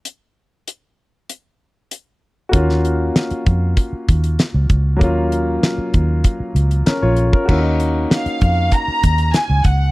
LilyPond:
<<
  \new Staff \with { instrumentName = "Violin section" } { \time 4/4 \key ees \minor \tempo 4 = 97 r1 | r1 | r1 | r4 f''4 bes''4 aes''8 ges''8 | }
  \new Staff \with { instrumentName = "Grand piano" } { \time 4/4 \key ees \minor << { r1 | r1 | r2. <des' bes'>16 <f' des''>8 <des' bes'>16~ | <des' bes'>16 r2. r8. | } \\ { r1 | <bes des' f' ges'>1 | <ges bes des' f'>1 | <bes des' ees' fes' ges'>1 | } >> }
  \new Staff \with { instrumentName = "Fingered electric bass" } { \clef bass \time 4/4 \key ees \minor r1 | ees,4 r8 f,8 r8 ees,8 r16 des,16 des,8 | ees,4 r8 ees,8 r8 des,8 r16 bes,,8 r16 | ees,4 r8 f,8 r8 ees,8 r16 des,16 des,8 | }
  \new DrumStaff \with { instrumentName = "Drums" } \drummode { \time 4/4 hh4 hh4 hh4 hh4 | <hh bd>16 sn16 hh8 <hh sn>16 hh16 <hh bd>8 <hh bd>8 <hh bd>16 hh16 <hh sn>8 <hh bd>8 | <hh bd>8 hh8 <hh sn>8 <hh bd>8 <hh bd>8 hh16 hh16 <hh sn>8 hh16 bd16 | <cymc bd>8 hh8 <hh sn>16 hh16 <hh bd>8 <hh bd>8 <hh bd>16 hh16 <hh sn>8 <hh bd>8 | }
>>